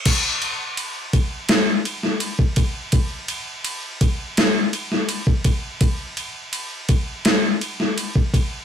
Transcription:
\new DrumStaff \with { instrumentName = "Drums" } \drummode { \time 4/4 \tempo 4 = 83 <cymc bd cymr>8 cymr8 cymr8 <bd cymr>8 <cymr sn>8 cymr16 sn16 cymr16 bd16 <bd cymr>8 | <bd cymr>8 cymr8 cymr8 <bd cymr>8 <cymr sn>8 cymr16 sn16 cymr16 bd16 <bd cymr>8 | <bd cymr>8 cymr8 cymr8 <bd cymr>8 <cymr sn>8 cymr16 sn16 cymr16 bd16 <bd cymr>8 | }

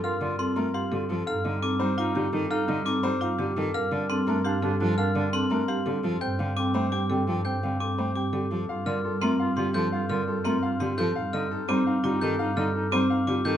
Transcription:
<<
  \new Staff \with { instrumentName = "Glockenspiel" } { \time 7/8 \key g \minor \tempo 4 = 170 f'''8 r8 c'''8 r8 c'''8 r4 | f'''8 r8 d'''8 r8 d'''8 r4 | f'''8 r8 d'''8 r8 d'''8 r4 | f'''8 r8 c'''8 r8 c'''8 r4 |
f'''8 r8 c'''8 r8 c'''8 r4 | g'''8 r8 d'''8 r8 d'''8 r4 | g'''8 r8 d'''8 r8 d'''8 r4 | r8 f'''8 r8 c'''8 r8 c'''8 g'''8 |
r8 f'''8 r8 c'''8 r8 c'''8 g'''8 | r8 f'''8 r8 d'''8 r8 d'''8 g'''8 | r8 f'''8 r8 d'''8 r8 d'''8 g'''8 | }
  \new Staff \with { instrumentName = "Grand piano" } { \time 7/8 \key g \minor f''8 d''8 a'8 bes'8 f''8 g'8 a'8 | f''8 ees''8 a'8 c''8 f''8 g'8 a'8 | f''8 ees''8 a'8 c''8 f''8 g'8 a'8 | f''8 d''8 a'8 bes'8 f''8 g'8 a'8 |
f''8 d''8 a'8 bes'8 f''8 g'8 a'8 | g''8 f''8 a'8 c''8 g''8 g'8 a'8 | g''8 f''8 a'8 c''8 g''8 g'8 a'8 | f''8 d''8 a'8 bes'8 f''8 g'8 a'8 |
f''8 d''8 a'8 bes'8 f''8 g'8 a'8 | f''8 ees''8 a'8 c''8 f''8 g'8 a'8 | f''8 ees''8 a'8 c''8 f''8 g'8 a'8 | }
  \new Staff \with { instrumentName = "Marimba" } { \time 7/8 \key g \minor bes'8 r8 c'8 r8 g'8 a'8 r8 | a'8 r8 c'8 r8 f'8 g'8 r8 | a'8 r8 c'8 r8 f'8 g'8 r8 | bes'8 r8 c'8 r8 g'8 a'8 r8 |
bes'8 r8 c'8 r8 g'8 a'8 r8 | c''8 r8 c'8 r8 g'8 a'8 r8 | c''8 r8 c'8 r8 g'8 a'8 r8 | r8 bes'8 r8 c'8 r8 g'8 a'8 |
r8 bes'8 r8 c'8 r8 g'8 a'8 | r8 a'8 r8 c'8 r8 f'8 g'8 | r8 a'8 r8 c'8 r8 f'8 g'8 | }
  \new Staff \with { instrumentName = "Clarinet" } { \time 7/8 \key g \minor f'8 f'8 f'8 f'8 f'8 f'8 r8 | ees'8 ees'8 ees'8 ees'8 ees'8 ees'8 ees'8 | ees'8 ees'8 ees'8 ees'8 ees'8 ees'8 r8 | d'8 d'8 d'8 d'8 d'8 d'8 d'8 |
d'8 d'8 d'8 d'8 d'8 d'8 r8 | c'8 c'8 c'8 c'8 c'8 c'8 c'8 | c'8 c'8 c'8 c'8 c'8 c'8 r8 | f'8 f'8 f'8 f'8 f'8 f'8 f'8 |
f'8 f'8 f'8 f'8 f'8 f'8 r8 | ees'8 ees'8 ees'8 ees'8 ees'8 ees'8 ees'8 | ees'8 ees'8 ees'8 ees'8 ees'8 ees'8 r8 | }
  \new Staff \with { instrumentName = "Cello" } { \clef bass \time 7/8 \key g \minor r8 d8 r8 a8 r8 d8 f8 | r8 d8 r8 g8 r8 d8 ees8 | r8 d8 r8 g8 r8 d8 ees8 | r8 d8 r8 a8 r8 d8 f8 |
r8 d8 r8 a8 r8 d8 f8 | r8 d8 r8 a8 r8 d8 f8 | r8 d8 r8 a8 r8 d8 f8 | r8 d8 r8 a8 r8 d8 f8 |
r8 d8 r8 a8 r8 d8 f8 | r8 d8 r8 g8 r8 d8 ees8 | r8 d8 r8 g8 r8 d8 ees8 | }
  \new Staff \with { instrumentName = "Double bass section" } { \clef bass \time 7/8 \key g \minor g,2.~ g,8 | g,2.~ g,8~ | g,2.~ g,8 | g,2.~ g,8~ |
g,2.~ g,8 | g,2.~ g,8~ | g,2.~ g,8 | g,2.~ g,8~ |
g,2.~ g,8 | g,2.~ g,8~ | g,2.~ g,8 | }
>>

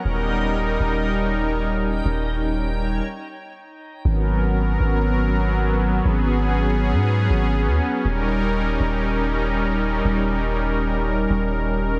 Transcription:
<<
  \new Staff \with { instrumentName = "Synth texture" } { \time 4/4 \key gis \minor \tempo 4 = 120 <dis' cis'' g''>1~ | <dis' cis'' g''>1 | r1 | r1 |
r1 | r1 | }
  \new Staff \with { instrumentName = "Analog synth pad" } { \time 4/4 \key gis \minor << { ais'1~ | ais'2 r2 | ais'1 | gis'1 |
ais'1~ | ais'1 | } \\ { <g cis' dis'>1~ | <g cis' dis'>2 r2 | <fis b cis'>1~ | <fis b cis'>1 |
<g dis'>1~ | <g dis'>1 | } >> }
  \new Staff \with { instrumentName = "808-style bass" } { \clef bass \time 4/4 \key gis \minor dis,,4. dis,,2~ dis,,8 | dis,,2 r2 | gis,,4. gis,,2~ gis,,8 | gis,,4.~ gis,,16 gis,8. gis,,8. dis,16 r8 |
dis,,4. dis,,2~ dis,,8 | dis,,2~ dis,,8 dis,,4. | }
>>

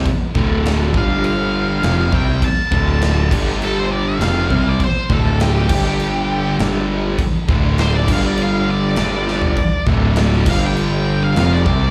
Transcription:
<<
  \new Staff \with { instrumentName = "Lead electric guitar" } { \time 4/4 \key d \minor \tempo 4 = 101 r4. f''8 f''4. g''8 | a''8 a''4 r8 a'16 c''16 d''16 f''4 d''16 | c''8 a'8 g'2 r4 | r4 c''16 d''16 f''16 d''16 f''8 d''4.~ |
d''8 r4 f''16 g''4 f''8 d''8. | }
  \new Staff \with { instrumentName = "Distorted electric guitar" } { \clef bass \time 4/4 \key d \minor r8 <d, a, d>4 <g, d g>4. <f, c f>8 <c g c'>8 | r8 <d, a, d>4 <g, d g>4. <f, c f>8 <c g c'>8 | r8 <d, a, d>4 <g, d g>4. <g, d g>4 | r8 <d, a, d>4 <g, d g>4. <g, d g>4 |
r8 <d, a, d>4 <g, d g>4. <f, c f>8 <c g c'>8 | }
  \new Staff \with { instrumentName = "Distorted electric guitar" } { \clef bass \time 4/4 \key d \minor r8 <d, a, d>4 <g, d g>4. <f, c f>8 <c g c'>8 | r8 <d, a, d>4 <g, d g>4. <f, c f>8 <c g c'>8 | r8 <d, a, d>4 <g, d g>4. <g, d g>4 | r8 <d, a, d>4 <g, d g>4. <g, d g>4 |
r8 <d, a, d>4 <g, d g>4. <f, c f>8 <c g c'>8 | }
  \new Staff \with { instrumentName = "Distorted electric guitar" } { \clef bass \time 4/4 \key d \minor r8 <d, a, d>4 <g, d g>4. <f, c f>8 <c g c'>8 | r8 <d, a, d>4 <g, d g>4. <f, c f>8 <c g c'>8 | r8 <d, a, d>4 <g, d g>4. <g, d g>4 | r8 <d, a, d>4 <g, d g>4. <g, d g>4 |
r8 <d, a, d>4 <g, d g>4. <f, c f>8 <c g c'>8 | }
  \new Staff \with { instrumentName = "Picked electric bass" } { \clef bass \time 4/4 \key d \minor r8 d,,4 g,,4. f,,8 c,8 | r8 d,,4 g,,4. f,,8 c,8 | r8 d,,4 g,,4. g,,4 | r8 d,,4 g,,4. g,,4 |
r8 d,,4 g,,4. f,,8 c,8 | }
  \new DrumStaff \with { instrumentName = "Drums" } \drummode { \time 4/4 <cymc bd>8 bd8 <cymc sn>8 bd8 cymc4 <cymc sn>8 bd8 | <cymc bd>8 bd8 <cymc sn>8 <cymc bd>16 sn16 cymc4 <cymc sn>8 bd8 | <cymc bd>8 bd8 <cymc sn>8 <cymc bd>8 cymc4 <cymc sn>4 | <cymc bd>8 bd8 <cymc sn>8 <cymc bd>8 cymc4 <cymc sn>8 sn16 tomfh16 |
<cymc bd>8 bd8 <cymc sn>16 sn16 <cymc bd>8 cymc4 <cymc sn>8 bd8 | }
>>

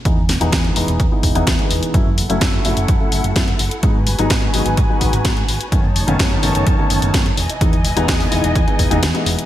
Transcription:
<<
  \new Staff \with { instrumentName = "String section" } { \time 4/4 \key e \major \tempo 4 = 127 r1 | <e' a' fis''>1 | <fis' b' gis''>1 | <dis' cis'' a''>2.~ <dis' cis'' a''>8 <e dis'' gis''>8~ |
<e dis'' gis''>1 | }
  \new Staff \with { instrumentName = "Grand piano" } { \time 4/4 \key e \major <e gis b dis'>16 r8 <e gis b dis'>8. <e gis b dis'>8. <e gis b dis'>8 <e gis b dis'>16 r16 <e gis b dis'>8. | <fis a cis' e'>16 r8 <fis a cis' e'>8. <fis a cis' e'>8. <fis a cis' e'>8. <fis a cis' e'>16 r8. | <fis gis b dis'>16 r8 <fis gis b dis'>8. <fis gis b dis'>8. <fis gis b dis'>8. <fis gis b dis'>16 r8. | <dis a b cis'>16 r8 <dis a b cis'>8. <dis a b cis'>8. <dis a b cis'>8. <dis a b cis'>16 r8. |
<e gis b dis'>16 r8 <e gis b dis'>8. <e gis b dis'>8. <e gis b dis'>8 <e gis b dis'>16 r16 <e gis b dis'>8. | }
  \new Staff \with { instrumentName = "Fingered electric bass" } { \clef bass \time 4/4 \key e \major e,8 e,,16 e,,16 e,16 r16 e,,16 e,,16 r8 e,,16 e,,16 e,16 r16 e,,16 r16 | fis,8 fis,,16 fis,,16 fis,16 r16 fis,,16 fis,,16 fis,16 r16 fis,,16 fis,,16 fis,16 r16 fis,,16 r16 | gis,8 gis,,16 gis,,16 r8 gis,,16 gis,,16 gis,16 r16 gis,,16 gis,,16 r8 gis,,16 r16 | fis,8 fis,,16 fis,,16 fis,16 r16 fis,,16 fis,,16 fis,16 r16 fis,,16 fis,,16 fis,16 r16 e,,16 r16 |
e,8 e,,16 e,,16 e,16 r16 e,,16 e,,16 e,16 r16 e,,16 e,,16 e,16 r16 e,,16 r16 | }
  \new DrumStaff \with { instrumentName = "Drums" } \drummode { \time 4/4 <hh bd>8 <hho sn>16 hh16 <hh bd sn>16 hh16 hho16 hh16 <hh bd>8 <hho bd>16 hh16 <hh bd sn>16 hh16 hho16 hh16 | <hh bd>8 hho16 hh16 <hh bd sn>8 hho16 hh16 <hh bd>8 hho16 hh16 <hh bd sn>16 hh16 hho16 hh16 | <hh bd>8 hho16 hh16 <hh bd sn>8 hho16 hh16 <hh bd>8 <hho bd>16 hh16 <hh bd sn>16 hh16 hho16 hh16 | <hh bd>8 hho16 hh16 <hh bd sn>8 hho16 hh16 <hh bd>8 hho16 hh16 <hh bd sn>16 hh16 hho16 hh16 |
<hh bd>16 hh16 hho16 hh16 <hh bd sn>16 hho16 hho16 hh16 <hh bd>16 hh16 <hho bd>16 hh16 <hh sn>16 hh16 hho16 hh16 | }
>>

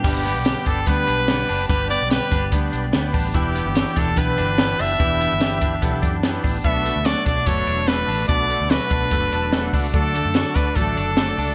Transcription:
<<
  \new Staff \with { instrumentName = "Trumpet" } { \time 4/4 \key g \lydian \tempo 4 = 146 g'4. a'8 b'2 | b'8 d''8 b'4 r2 | g'4. a'8 b'4. e''8~ | e''2~ e''8 r4. |
e''4 d''8 d''8 cis''4 b'4 | d''4 b'2~ b'8 r8 | a'4. b'8 a'2 | }
  \new Staff \with { instrumentName = "Transistor combo organ" } { \time 4/4 \key g \lydian << { r1 | r1 | r1 | r1 |
r1 | r2 r8 a''8 fis''4 | r1 | } \\ { <b d' g' b'>4 <b d' g' b'>4 <b d' g' b'>4 <b d' g' d''>4 | <b d' g' b'>4 <b d' g' b'>4 <b d' g' b'>4 <b d' g' b'>4 | <d' e' g' b'>4 <d' e' g' cis''>4 <d' e' g' b'>4 <d' e' g' b'>4 | <d' e' g' b'>4 <d' e' g' b'>4 <d' e' g' a'>4 <d' e' g' b'>4 |
<d' fis' a' b'>4 <d' fis' a' cis''>4 <d' fis' a' b'>4 <d' fis' a' b'>4 | <d' fis' a' b'>4 <d' fis' a' b'>4 <d' fis' a' b'>4 <d' fis' a' b'>4 | <d' fis' a' d''>4 <d' fis' a' d''>4 <d' fis' a' d''>4 <d' fis' a' d''>4 | } >> }
  \new Staff \with { instrumentName = "Clean electric guitar" } { \time 4/4 \key g \lydian g8 b8 g'8 d'8 b8 d'8 b8 d'8 | g8 b8 g'8 d'8 b8 d'8 b8 d'8 | e8 b8 g'8 d'8 b8 d'8 b8 d'8 | e8 b8 g'8 d'8 b8 d'8 b8 d'8 |
b,8 a8 fis'8 d'8 a8 d'8 a8 d'8 | b,8 a8 fis'8 d'8 a8 d'8 a8 d'8 | d8 a8 fis'8 d'8 a8 d'8 a8 d'8 | }
  \new Staff \with { instrumentName = "Clean electric guitar" } { \time 4/4 \key g \lydian <g, d g b d' g'>8 <g b d' g'>8 <g, d g b d' g'>8 <g b d'>8 <g b d' g'>4 <g, d g b d' g'>8 <g b d' g'>8 | <g, d g b d'>8 <g b d' g'>8 <g, d g b d' g'>8 <g b d' g'>8 <g b d' g'>4 <g, d g b d' g'>8 <g b d' g'>8 | <e b d' g'>8 <b d'>8 <e b d' g'>8 b8 <e b d' g'>4 <e b d' g'>8 <b d' g'>8 | <e b d' g'>8 <b d'>8 <e b d' g'>8 <b d'>8 <e b d' g'>4 <e b d' g'>8 <b d' g'>8 |
<b, fis a d' fis'>8 <a d' fis'>8 <b, fis a d' fis'>8 <a fis'>8 <fis a d' fis'>4 <b, fis a d' fis'>8 <a d' fis'>8 | <b, fis a d' fis'>8 <a fis'>8 <b, fis a d' fis'>8 <a d' fis'>8 <fis a d' fis'>4 <b, fis a d' fis'>8 <a d' fis'>8 | <d fis a d' fis'>8 <a d' fis'>8 <d fis a d' fis'>8 <a d'>8 <fis a d' fis'>4 <d fis a d' fis'>8 <a d' fis'>8 | }
  \new Staff \with { instrumentName = "Fingered electric bass" } { \clef bass \time 4/4 \key g \lydian g,,8. b,,8 r16 g,,8 d,8 b,,4 fis,,8 | g,,8. b,,8 r16 g,,8 d,8 b,,8 d,8 a,,8 | e,,8. g,,8 r16 e,,8 b,,8 g,,4 fis,,8 | e,,8. g,,4~ g,,16 b,,8 fis,4 a,,8 |
b,,8. d,8 r16 b,,8 fis,,8 e,,4 a,,8 | b,,8. d,8 r16 b,,8 fis,,8 e,,4 cis,8 | d,8. fis,8 r16 d,8 a,,8 fis,,4 cis,8 | }
  \new DrumStaff \with { instrumentName = "Drums" } \drummode { \time 4/4 <cymc bd>8 hh8 <hh sn>8 <hh bd>8 <hh bd>8 hh8 <hh sn>8 hho8 | <hh bd>8 hh8 <hh sn>8 <hh bd sn>8 <hh bd>8 hh8 <hh sn>8 <hho bd>8 | <hh bd>8 hh8 <hh sn>8 <hh bd sn>8 <hh bd>8 hh8 <hh sn>8 hho8 | <hh bd>8 hh8 <hh sn>8 <hh bd>8 <hh bd>8 <hh bd>8 <hh sn>8 <hho bd>8 |
<hh bd>8 hh8 <hh sn>8 <hh bd sn>8 <hh bd>8 hh8 <hh sn>8 hho8 | <hh bd>8 hh8 <hh sn>8 <hh bd>8 <hh bd>8 hh8 <hh sn>8 <hho bd>8 | <hh bd>8 hh8 <hh sn>8 <hh bd sn>8 <hh bd>8 hh8 <hh sn>8 hho8 | }
>>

